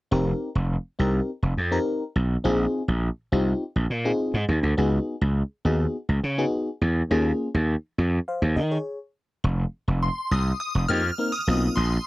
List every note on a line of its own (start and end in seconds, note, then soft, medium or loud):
0.11 0.32 F1 loud
0.11 0.49 C4 medium
0.11 0.49 D#4 medium
0.11 0.50 G4 medium
0.11 0.50 A#4 medium
0.55 0.76 F1 loud
0.99 1.19 C2 medium
0.99 1.31 C4 medium
0.99 1.31 D#4 medium
0.99 1.31 G4 medium
0.99 1.31 A#4 medium
1.43 1.53 F1 medium
1.57 1.78 F2 loud
1.71 2.03 C4 medium
1.71 2.03 D#4 medium
1.71 2.04 G4 medium
1.71 2.04 A#4 loud
2.16 2.36 B1 medium
2.44 2.65 A#1 loud
2.44 2.82 C4 loud
2.44 2.83 D#4 medium
2.44 2.83 F4 medium
2.44 2.83 G#4 loud
2.88 3.08 A#1 medium
3.32 3.52 C2 medium
3.32 3.64 C4 medium
3.32 3.64 D#4 medium
3.32 3.64 F4 medium
3.32 3.64 G4 medium
3.76 3.86 A#1 medium
3.90 4.11 A#2 loud
4.05 4.37 C4 medium
4.05 4.37 D#4 medium
4.05 4.37 F4 medium
4.05 4.37 G#4 medium
4.34 4.44 G#2 medium
4.48 4.59 D#2 medium
4.63 4.73 D2 medium
4.77 4.98 C#2 loud
4.77 5.16 B3 medium
4.77 5.16 D#4 medium
4.77 5.16 F#4 medium
4.77 5.16 G#4 medium
5.21 5.42 C#2 loud
5.65 5.85 D#2 medium
5.65 5.97 B3 medium
5.65 5.97 D#4 medium
5.65 5.97 F#4 medium
5.65 5.97 G#4 medium
6.09 6.19 C#2 medium
6.24 6.44 C#3 loud
6.38 6.70 B3 medium
6.38 6.70 D#4 medium
6.38 6.70 F#4 medium
6.38 6.70 G#4 loud
6.81 7.02 E2 medium
7.11 7.31 D#2 loud
7.11 7.49 A#3 medium
7.11 7.49 C#4 medium
7.11 7.49 F4 medium
7.11 7.49 G#4 loud
7.54 7.75 D#2 medium
7.98 8.18 F2 medium
8.28 8.56 C5 medium
8.28 8.55 F5 medium
8.42 8.58 D#2 medium
8.56 8.77 D#3 medium
8.56 8.70 A#4 medium
8.56 8.70 D#5 medium
8.71 8.99 G#4 medium
8.71 8.99 C#5 medium
9.44 9.64 F1 loud
9.88 10.08 F1 medium
10.03 10.32 C6 medium
10.31 10.51 C2 medium
10.31 10.45 D#6 medium
10.60 10.73 D#6 loud
10.75 10.85 F1 loud
10.88 11.10 F2 loud
10.88 11.02 A#3 medium
10.88 11.02 C4 medium
10.88 11.02 D#4 medium
10.88 11.02 G4 medium
10.88 11.30 F6 loud
11.18 11.31 A#3 medium
11.18 11.31 C4 medium
11.18 11.31 D#4 medium
11.18 11.32 A#4 medium
11.32 11.78 D#6 medium
11.47 11.68 B1 medium
11.47 11.77 A#3 medium
11.47 11.77 C4 medium
11.47 11.77 D#4 medium
11.47 11.77 F4 medium
11.76 11.97 A#1 loud
11.76 12.07 C6 medium